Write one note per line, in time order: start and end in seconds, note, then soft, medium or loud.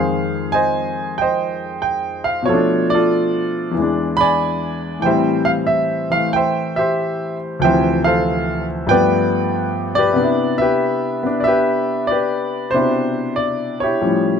0.00 2.44 F2 soft
0.00 2.46 D#3 soft
0.00 2.48 G#3 soft
0.00 2.50 G#4 medium
0.00 0.53 C5 medium
0.00 0.49 F5 medium
0.52 1.20 C5 medium
0.52 1.20 D#5 medium
0.52 1.14 G#5 medium
1.18 2.45 C5 medium
1.18 2.44 D#5 medium
1.18 1.80 G5 medium
1.82 2.27 G5 medium
2.24 2.47 F5 medium
2.43 3.73 B2 medium
2.43 3.75 F3 soft
2.43 2.86 C#5 medium
2.49 3.77 A3 soft
2.49 2.93 F4 medium
2.49 2.93 A4 medium
2.53 3.79 D4 medium
2.90 4.14 D5 medium
2.94 3.73 F4 medium
2.94 3.74 A4 medium
3.71 5.02 E2 medium
3.71 5.02 E3 soft
3.79 5.05 G#3 soft
3.79 5.07 D4 medium
4.17 5.01 D5 medium
4.17 4.99 B5 loud
4.21 5.01 G#5 medium
5.00 7.58 A2 medium
5.00 6.09 E3 soft
5.00 5.43 G5 medium
5.05 7.62 G3 medium
5.05 6.29 C5 medium
5.05 5.65 E5 medium
5.10 7.64 C4 medium
5.45 5.50 F5 medium
5.67 6.07 E5 medium
6.10 7.60 E3 soft
6.10 7.62 A3 soft
6.10 6.31 F5 medium
6.33 6.77 C5 medium
6.33 6.75 E5 medium
6.33 6.77 G5 medium
6.76 7.58 G4 medium
6.76 7.58 C5 medium
6.76 7.36 E5 medium
7.60 8.88 D2 medium
7.60 8.89 C3 soft
7.60 8.87 F3 soft
7.60 8.01 G5 medium
7.64 8.91 E3 medium
7.64 8.05 C5 medium
7.64 8.87 E5 medium
8.04 8.86 A4 medium
8.04 8.86 C5 medium
8.04 8.64 F5 medium
8.87 10.16 G2 medium
8.87 10.17 F3 soft
8.87 10.18 A3 soft
8.87 9.98 B4 medium
8.87 9.99 G5 loud
8.91 10.15 B3 medium
8.91 9.94 D5 medium
9.95 10.60 G4 medium
9.95 10.56 D5 medium
9.99 10.60 B4 medium
10.12 12.71 C3 medium
10.16 11.22 B3 medium
10.16 11.25 D4 soft
10.23 12.73 E4 medium
10.58 11.46 G4 medium
10.58 11.47 B4 medium
10.58 11.42 E5 medium
11.23 12.73 B3 soft
11.23 12.73 D4 medium
11.40 11.45 D5 medium
11.40 12.05 E5 medium
11.47 12.10 G4 medium
11.47 12.11 B4 medium
12.07 12.74 D5 medium
12.11 12.73 G4 medium
12.11 13.35 B4 medium
12.71 14.02 B2 soft
12.71 14.02 C3 medium
12.71 14.02 D4 soft
12.71 13.82 G4 medium
12.71 13.32 C5 medium
12.75 13.82 E4 medium
13.36 13.77 D5 medium
13.80 14.40 E4 medium
13.80 14.40 G4 medium
13.80 14.40 C#5 medium
14.01 14.40 A2 medium
14.01 14.40 F3 medium
14.01 14.40 G3 soft
14.01 14.40 C#4 soft